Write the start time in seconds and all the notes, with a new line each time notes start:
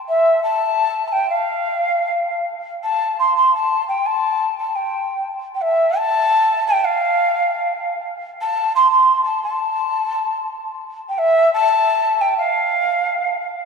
0.08 E5
0.43 A5
1.07 A5
1.12 G5
1.29 F5
2.83 A5
3.19 C6
3.36 C6
3.55 A5
3.88 G5
4.06 A5
4.58 A5
4.75 G5
5.55 G5
5.62 E5
5.97 A5
6.67 G5
6.84 F5
8.41 A5
8.75 C6
8.90 C6
9.24 A5
9.43 A5
11.09 G5
11.18 E5
11.53 A5
12.21 G5
12.37 F5